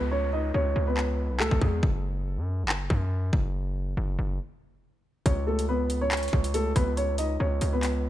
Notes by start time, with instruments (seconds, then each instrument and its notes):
Already playing: 808-style bass C#2, downlifter
0.11 grand piano C#4 C#5
0.33 grand piano D#4 D#5
0.54 808-style bass C#2, grand piano C#4 C#5
0.76 808-style bass C#2
0.87 grand piano B3 B4
0.97 clap
1.30 808-style bass B1
1.40 808-style bass C#2, grand piano A3 A4, clap
1.51 808-style bass C#2, kick
1.61 808-style bass E2, grand piano G#3 G#4, kick
1.83 808-style bass F#1, kick
2.37 808-style bass F#2
2.63 808-style bass F#1
2.69 clap
2.90 808-style bass F#2, kick
3.33 808-style bass F#1, kick
3.97 808-style bass F#1
4.19 808-style bass F#1
5.26 808-style bass C#2, grand piano C#4 C#5, kick, closed hi-hat
5.47 grand piano A3 A4
5.59 closed hi-hat
5.69 grand piano B3 B4
5.90 closed hi-hat
6.01 grand piano C#4 C#5
6.11 clap, closed hi-hat
6.17 closed hi-hat
6.23 closed hi-hat
6.28 closed hi-hat
6.33 808-style bass C#2, kick
6.44 closed hi-hat
6.54 grand piano A3 A4, closed hi-hat
6.76 808-style bass C#2, grand piano B3 B4, kick, closed hi-hat
6.97 grand piano C#4 C#5, closed hi-hat
7.18 grand piano D#4 D#5, closed hi-hat
7.40 808-style bass C#2, grand piano C#4 C#5
7.61 808-style bass C#2, closed hi-hat
7.73 grand piano B3 B4
7.83 clap, closed hi-hat